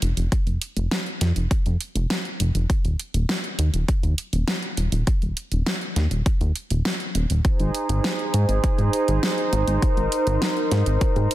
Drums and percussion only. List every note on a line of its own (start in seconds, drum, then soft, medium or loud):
0.02 closed hi-hat medium
0.17 closed hi-hat medium
0.32 kick loud
0.32 closed hi-hat medium
0.47 closed hi-hat soft
0.62 closed hi-hat medium
0.77 closed hi-hat medium
0.91 snare loud
0.91 closed hi-hat medium
1.06 closed hi-hat soft
1.21 snare soft
1.21 closed hi-hat loud
1.36 closed hi-hat medium
1.51 kick loud
1.51 closed hi-hat medium
1.66 closed hi-hat soft
1.81 closed hi-hat medium
1.96 closed hi-hat medium
2.10 snare loud
2.10 closed hi-hat medium
2.25 closed hi-hat soft
2.40 closed hi-hat medium
2.55 closed hi-hat medium
2.70 kick loud
2.70 closed hi-hat medium
2.85 closed hi-hat soft
3.00 closed hi-hat medium
3.14 closed hi-hat soft
3.29 snare loud
3.29 closed hi-hat medium
3.44 closed hi-hat soft
3.59 closed hi-hat medium
3.74 closed hi-hat medium
3.88 kick loud
3.88 closed hi-hat medium
4.03 closed hi-hat soft
4.18 closed hi-hat medium
4.33 closed hi-hat soft
4.48 snare loud
4.48 closed hi-hat medium
4.63 closed hi-hat soft
4.77 closed hi-hat medium
4.92 closed hi-hat medium
5.07 kick loud
5.07 closed hi-hat medium
5.22 closed hi-hat soft
5.37 closed hi-hat medium
5.52 closed hi-hat soft
5.66 snare loud
5.66 closed hi-hat soft
5.81 closed hi-hat soft
5.96 snare soft
5.96 closed hi-hat medium
6.11 closed hi-hat medium
6.26 kick loud
6.26 closed hi-hat medium
6.41 closed hi-hat soft
6.56 closed hi-hat medium
6.70 closed hi-hat soft
6.85 snare loud
6.85 closed hi-hat medium
7.00 closed hi-hat soft
7.15 closed hi-hat medium
7.30 closed hi-hat medium
7.45 kick loud
7.45 closed hi-hat soft
7.60 closed hi-hat soft
7.75 closed hi-hat medium
7.89 closed hi-hat soft
8.04 snare loud
8.04 closed hi-hat soft
8.19 closed hi-hat soft
8.34 closed hi-hat medium
8.49 closed hi-hat soft
8.64 kick loud
8.64 closed hi-hat soft
8.78 closed hi-hat soft
8.93 closed hi-hat medium
9.08 closed hi-hat soft
9.23 snare loud
9.23 closed hi-hat soft
9.38 closed hi-hat soft
9.53 closed hi-hat medium
9.68 closed hi-hat medium
9.82 kick loud
9.82 closed hi-hat soft
9.97 closed hi-hat soft
10.12 closed hi-hat medium
10.27 closed hi-hat soft
10.42 snare loud
10.42 closed hi-hat soft
10.57 closed hi-hat soft
10.71 snare soft
10.71 closed hi-hat medium
10.86 closed hi-hat soft
11.01 kick loud
11.01 closed hi-hat soft
11.16 closed hi-hat soft
11.31 closed hi-hat medium